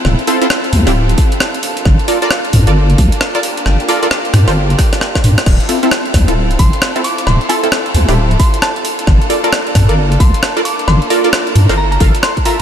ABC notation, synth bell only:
X:1
M:4/4
L:1/16
Q:"Swing 16ths" 1/4=133
K:Gdor
V:1 name="Synth bell"
z16 | z16 | z16 | z8 z2 c'2 z2 d'2 |
c'2 a2 z6 c'2 a a z2 | z8 z2 c'2 z2 d'2 | c'2 z6 b b z2 c'2 b z |]